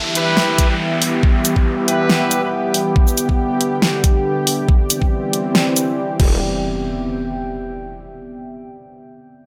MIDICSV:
0, 0, Header, 1, 8, 480
1, 0, Start_track
1, 0, Key_signature, 1, "minor"
1, 0, Tempo, 431655
1, 1370, Time_signature, 4, 2, 24, 8
1, 10520, End_track
2, 0, Start_track
2, 0, Title_t, "Ambient pad"
2, 0, Program_c, 0, 92
2, 0, Note_on_c, 0, 59, 85
2, 0, Note_on_c, 0, 62, 86
2, 0, Note_on_c, 0, 67, 78
2, 0, Note_on_c, 0, 69, 87
2, 0, Note_on_c, 0, 76, 99
2, 0, Note_on_c, 0, 79, 88
2, 0, Note_on_c, 0, 81, 81
2, 326, Note_off_c, 0, 69, 0
2, 411, Note_off_c, 0, 62, 0
2, 993, Note_off_c, 0, 81, 0
2, 3290, Note_on_c, 0, 50, 98
2, 4061, Note_off_c, 0, 76, 0
2, 4161, Note_on_c, 0, 74, 85
2, 5210, Note_off_c, 0, 50, 0
2, 5211, Note_off_c, 0, 59, 0
2, 5211, Note_on_c, 0, 60, 79
2, 5982, Note_off_c, 0, 74, 0
2, 6890, Note_on_c, 0, 59, 81
2, 6891, Note_off_c, 0, 60, 0
2, 6891, Note_off_c, 0, 67, 0
2, 6891, Note_off_c, 0, 79, 0
2, 6967, Note_on_c, 0, 67, 83
2, 7280, Note_on_c, 0, 76, 82
2, 7348, Note_on_c, 0, 79, 80
2, 8766, Note_off_c, 0, 59, 0
2, 8766, Note_off_c, 0, 67, 0
2, 9006, Note_off_c, 0, 76, 0
2, 9006, Note_off_c, 0, 79, 0
2, 10520, End_track
3, 0, Start_track
3, 0, Title_t, "Brass ensemble"
3, 0, Program_c, 1, 61
3, 170, Note_on_c, 1, 67, 90
3, 171, Note_on_c, 1, 64, 96
3, 171, Note_on_c, 1, 71, 110
3, 747, Note_off_c, 1, 64, 0
3, 747, Note_off_c, 1, 67, 0
3, 747, Note_off_c, 1, 71, 0
3, 778, Note_on_c, 1, 64, 83
3, 778, Note_on_c, 1, 67, 73
3, 778, Note_on_c, 1, 71, 87
3, 838, Note_off_c, 1, 64, 0
3, 838, Note_off_c, 1, 67, 0
3, 838, Note_off_c, 1, 71, 0
3, 2090, Note_on_c, 1, 64, 99
3, 2090, Note_on_c, 1, 67, 89
3, 2090, Note_on_c, 1, 71, 107
3, 2667, Note_off_c, 1, 64, 0
3, 2667, Note_off_c, 1, 67, 0
3, 2667, Note_off_c, 1, 71, 0
3, 2697, Note_on_c, 1, 64, 83
3, 2697, Note_on_c, 1, 67, 74
3, 2697, Note_on_c, 1, 71, 89
3, 2758, Note_off_c, 1, 64, 0
3, 2758, Note_off_c, 1, 67, 0
3, 2758, Note_off_c, 1, 71, 0
3, 10520, End_track
4, 0, Start_track
4, 0, Title_t, "Analog synth pad"
4, 0, Program_c, 2, 89
4, 0, Note_on_c, 2, 52, 78
4, 0, Note_on_c, 2, 55, 73
4, 0, Note_on_c, 2, 59, 71
4, 0, Note_on_c, 2, 67, 85
4, 3252, Note_off_c, 2, 52, 0
4, 3290, Note_on_c, 2, 50, 80
4, 5166, Note_off_c, 2, 55, 0
4, 5166, Note_off_c, 2, 59, 0
4, 5191, Note_off_c, 2, 50, 0
4, 5210, Note_on_c, 2, 52, 79
4, 5210, Note_on_c, 2, 55, 70
4, 5210, Note_on_c, 2, 60, 69
4, 6846, Note_off_c, 2, 67, 0
4, 6873, Note_off_c, 2, 52, 0
4, 6873, Note_off_c, 2, 55, 0
4, 6873, Note_off_c, 2, 60, 0
4, 10520, End_track
5, 0, Start_track
5, 0, Title_t, "Wobble bass"
5, 0, Program_c, 3, 39
5, 6890, Note_on_c, 3, 28, 101
5, 7113, Note_off_c, 3, 28, 0
5, 10520, End_track
6, 0, Start_track
6, 0, Title_t, "Downlifter"
6, 0, Program_c, 4, 103
6, 0, Note_on_c, 4, 60, 71
6, 3291, Note_off_c, 4, 60, 0
6, 10520, End_track
7, 0, Start_track
7, 0, Title_t, "Impact"
7, 0, Program_c, 5, 103
7, 6890, Note_on_c, 5, 60, 66
7, 8810, Note_off_c, 5, 60, 0
7, 10520, End_track
8, 0, Start_track
8, 0, Title_t, "Drums"
8, 171, Note_on_c, 9, 42, 83
8, 282, Note_off_c, 9, 42, 0
8, 410, Note_on_c, 9, 38, 118
8, 522, Note_off_c, 9, 38, 0
8, 650, Note_on_c, 9, 36, 105
8, 650, Note_on_c, 9, 42, 79
8, 761, Note_off_c, 9, 42, 0
8, 762, Note_off_c, 9, 36, 0
8, 1130, Note_on_c, 9, 46, 97
8, 1242, Note_off_c, 9, 46, 0
8, 1370, Note_on_c, 9, 36, 122
8, 1482, Note_off_c, 9, 36, 0
8, 1610, Note_on_c, 9, 42, 83
8, 1610, Note_on_c, 9, 82, 50
8, 1722, Note_off_c, 9, 42, 0
8, 1722, Note_off_c, 9, 82, 0
8, 1738, Note_on_c, 9, 36, 63
8, 1849, Note_off_c, 9, 36, 0
8, 2090, Note_on_c, 9, 42, 83
8, 2202, Note_off_c, 9, 42, 0
8, 2330, Note_on_c, 9, 38, 125
8, 2441, Note_off_c, 9, 38, 0
8, 2570, Note_on_c, 9, 42, 82
8, 2570, Note_on_c, 9, 82, 48
8, 2682, Note_off_c, 9, 42, 0
8, 2682, Note_off_c, 9, 82, 0
8, 3050, Note_on_c, 9, 46, 96
8, 3161, Note_off_c, 9, 46, 0
8, 3290, Note_on_c, 9, 36, 125
8, 3401, Note_off_c, 9, 36, 0
8, 3418, Note_on_c, 9, 82, 58
8, 3529, Note_off_c, 9, 82, 0
8, 3530, Note_on_c, 9, 42, 80
8, 3530, Note_on_c, 9, 82, 50
8, 3642, Note_off_c, 9, 42, 0
8, 3642, Note_off_c, 9, 82, 0
8, 3658, Note_on_c, 9, 36, 64
8, 3769, Note_off_c, 9, 36, 0
8, 4010, Note_on_c, 9, 42, 80
8, 4122, Note_off_c, 9, 42, 0
8, 4250, Note_on_c, 9, 38, 124
8, 4361, Note_off_c, 9, 38, 0
8, 4490, Note_on_c, 9, 36, 110
8, 4490, Note_on_c, 9, 42, 80
8, 4601, Note_off_c, 9, 36, 0
8, 4602, Note_off_c, 9, 42, 0
8, 4971, Note_on_c, 9, 46, 91
8, 5082, Note_off_c, 9, 46, 0
8, 5210, Note_on_c, 9, 36, 120
8, 5321, Note_off_c, 9, 36, 0
8, 5450, Note_on_c, 9, 42, 79
8, 5450, Note_on_c, 9, 82, 51
8, 5561, Note_off_c, 9, 42, 0
8, 5561, Note_off_c, 9, 82, 0
8, 5578, Note_on_c, 9, 36, 64
8, 5689, Note_off_c, 9, 36, 0
8, 5931, Note_on_c, 9, 42, 76
8, 6042, Note_off_c, 9, 42, 0
8, 6170, Note_on_c, 9, 38, 122
8, 6282, Note_off_c, 9, 38, 0
8, 6410, Note_on_c, 9, 42, 79
8, 6410, Note_on_c, 9, 82, 50
8, 6521, Note_off_c, 9, 42, 0
8, 6521, Note_off_c, 9, 82, 0
8, 6891, Note_on_c, 9, 36, 114
8, 6891, Note_on_c, 9, 49, 87
8, 7002, Note_off_c, 9, 36, 0
8, 7002, Note_off_c, 9, 49, 0
8, 10520, End_track
0, 0, End_of_file